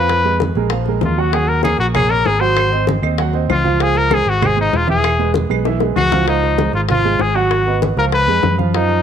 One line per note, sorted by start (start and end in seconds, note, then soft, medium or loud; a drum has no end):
0.00 0.50 F2 loud
0.00 0.19 F3 medium
0.00 0.19 F4 medium
0.00 0.41 B4 loud
0.00 0.20 F5 medium
0.09 high bongo medium
0.09 high conga soft
0.25 0.50 G#3 medium
0.25 0.51 G#4 medium
0.25 0.51 B4 medium
0.25 high bongo soft
0.25 high conga soft
0.40 high bongo medium
0.40 high conga medium
0.55 0.99 A#1 medium
0.55 0.69 G#3 medium
0.55 0.69 G#4 medium
0.55 0.69 A#4 medium
0.55 high bongo soft
0.55 high conga soft
0.70 0.84 F3 medium
0.70 0.84 F4 medium
0.70 0.85 F5 medium
0.70 high bongo medium
0.70 high conga soft
0.86 1.13 G#3 medium
0.86 1.13 G#4 medium
0.86 1.13 A#4 medium
0.86 high bongo soft
0.86 high conga soft
1.01 1.74 D#2 medium
1.01 1.22 F4 medium
1.01 high bongo soft
1.01 low bongo medium
1.01 high conga medium
1.18 1.31 F#3 medium
1.18 1.31 F#4 medium
1.18 1.36 F#4 medium
1.18 1.31 F#5 medium
1.33 1.59 F#3 medium
1.33 1.59 F#4 medium
1.33 1.50 G#4 medium
1.33 1.59 F#5 medium
1.33 high bongo medium
1.33 high conga soft
1.47 1.63 A#4 medium
1.47 high bongo soft
1.47 high conga soft
1.63 1.89 A#3 medium
1.63 1.78 G#4 medium
1.63 1.89 A#4 medium
1.63 1.89 C#5 medium
1.63 high bongo medium
1.63 high conga medium
1.63 claves medium
1.78 2.22 A#1 medium
1.78 1.87 F#4 medium
1.78 high bongo soft
1.78 high conga soft
1.94 2.07 A#3 medium
1.94 2.12 G#4 loud
1.94 2.07 A#4 medium
1.94 2.07 C#5 medium
1.94 high bongo medium
1.94 high conga soft
1.94 low conga medium
1.94 claves medium
2.09 2.36 A#3 medium
2.09 2.28 A#4 loud
2.09 2.36 C#5 medium
2.09 high bongo soft
2.09 high conga soft
2.25 2.97 G#1 medium
2.25 2.42 G#4 medium
2.25 high bongo soft
2.25 low bongo medium
2.25 high conga soft
2.40 2.66 F#3 medium
2.40 2.67 F#4 medium
2.40 2.87 C5 loud
2.40 2.67 F#5 medium
2.57 high bongo medium
2.57 high conga soft
2.57 claves medium
2.71 2.97 C4 medium
2.71 2.97 C5 medium
2.71 2.97 D#5 medium
2.71 high bongo soft
2.71 high conga soft
2.87 high bongo medium
2.87 high conga medium
3.02 3.46 D#2 medium
3.02 3.15 C4 medium
3.02 3.15 C5 medium
3.02 3.16 D#5 medium
3.02 high bongo soft
3.02 high conga soft
3.02 claves medium
3.18 3.31 F#3 medium
3.18 3.31 F#4 medium
3.18 3.32 F#5 medium
3.18 high bongo medium
3.18 high conga soft
3.33 3.59 C4 medium
3.33 3.60 C5 medium
3.33 3.60 D#5 medium
3.33 high bongo soft
3.33 high conga soft
3.49 4.21 C#2 medium
3.49 3.84 F4 medium
3.49 high bongo soft
3.49 low bongo medium
3.49 high conga medium
3.49 claves medium
3.64 3.77 F3 medium
3.64 3.78 F4 medium
3.64 3.78 F5 medium
3.64 high conga medium
3.80 4.05 F3 medium
3.80 4.06 F4 medium
3.80 3.99 G#4 loud
3.80 4.06 F5 medium
3.80 high bongo medium
3.95 4.15 A#4 loud
3.95 high bongo soft
3.95 high conga soft
4.11 4.37 G#3 medium
4.11 4.37 G#4 medium
4.11 4.31 G#4 loud
4.11 4.37 C5 medium
4.11 high bongo medium
4.11 high conga medium
4.11 claves medium
4.26 4.69 G#1 medium
4.26 4.48 F#4 medium
4.26 high bongo soft
4.26 high conga soft
4.42 4.55 G#3 medium
4.42 4.55 G#4 medium
4.42 4.55 C5 medium
4.42 high bongo medium
4.42 high conga soft
4.42 low conga medium
4.42 claves medium
4.46 4.59 G#4 loud
4.57 4.82 G#3 medium
4.57 4.78 D#4 medium
4.57 4.83 G#4 medium
4.57 4.83 C5 medium
4.57 high bongo soft
4.57 high conga soft
4.73 5.45 E1 medium
4.73 4.90 F4 medium
4.73 high bongo soft
4.73 low bongo medium
4.73 high conga soft
4.87 5.13 E3 medium
4.87 5.13 E4 medium
4.87 5.32 G#4 medium
4.87 5.13 E5 medium
4.87 high conga medium
5.04 high bongo medium
5.04 high conga soft
5.04 claves medium
5.19 5.44 G#3 medium
5.19 5.45 G#4 medium
5.19 5.44 B4 medium
5.19 high bongo soft
5.19 high conga soft
5.34 high bongo medium
5.34 high conga medium
5.49 5.93 B1 medium
5.49 5.62 G#3 medium
5.49 5.63 G#4 medium
5.49 5.63 B4 medium
5.49 high bongo soft
5.49 high conga soft
5.49 claves medium
5.65 5.78 E3 medium
5.65 5.79 E4 medium
5.65 5.79 E5 medium
5.65 high bongo medium
5.65 high conga soft
5.80 6.06 G#3 medium
5.80 6.07 G#4 medium
5.80 6.07 B4 medium
5.80 high bongo medium
5.80 high conga soft
5.96 6.68 C#2 medium
5.96 6.25 F#4 loud
5.96 low bongo medium
5.96 high conga medium
5.96 claves medium
6.12 6.25 F3 medium
6.12 6.25 F4 medium
6.12 6.25 F5 medium
6.12 low bongo medium
6.12 high conga medium
6.27 6.53 F3 medium
6.27 6.71 D#4 medium
6.27 6.53 F4 medium
6.27 6.53 F5 medium
6.27 high bongo medium
6.43 high bongo soft
6.43 high conga soft
6.58 6.83 G#3 medium
6.58 6.84 G#4 medium
6.58 6.84 C5 medium
6.58 high bongo medium
6.58 high conga medium
6.73 7.16 G#1 medium
6.73 6.81 F4 medium
6.73 high bongo soft
6.73 high conga soft
6.89 7.02 F3 medium
6.89 7.02 F4 medium
6.89 7.23 F4 medium
6.89 7.02 F5 medium
6.89 high bongo medium
6.89 high conga soft
6.89 low conga medium
7.04 7.30 G#3 medium
7.04 7.30 G#4 medium
7.04 7.30 C5 medium
7.04 high bongo soft
7.04 high conga soft
7.19 7.91 G#1 medium
7.19 7.37 G#4 medium
7.19 high bongo soft
7.19 low bongo medium
7.19 high conga soft
7.35 7.61 F#3 medium
7.35 7.82 F#4 medium
7.35 7.61 F#4 medium
7.35 7.61 F#5 medium
7.51 high bongo medium
7.51 high conga soft
7.66 7.92 B3 medium
7.66 7.92 B4 medium
7.66 7.92 D#5 medium
7.66 high bongo soft
7.66 high conga soft
7.82 high bongo medium
7.82 high conga medium
7.96 8.26 C#2 medium
7.96 8.23 F3 medium
7.96 8.23 F4 medium
7.96 8.05 A#4 medium
7.96 8.23 F5 medium
7.96 high bongo soft
7.96 high conga soft
8.12 8.57 B4 loud
8.12 high bongo medium
8.12 high conga soft
8.27 8.42 F2 medium
8.27 8.53 G#3 medium
8.27 8.54 G#4 medium
8.27 8.54 B4 medium
8.27 high bongo soft
8.27 high conga soft
8.43 9.02 F#2 medium
8.43 high bongo soft
8.43 low bongo medium
8.43 high conga medium
8.58 8.71 F3 medium
8.58 8.71 F4 medium
8.58 8.71 F5 medium
8.58 high conga medium
8.74 9.00 F3 medium
8.74 9.02 D#4 medium
8.74 9.00 F4 medium
8.74 9.00 F5 medium
8.74 high bongo medium
8.74 high conga soft
8.89 high bongo soft
8.89 high conga soft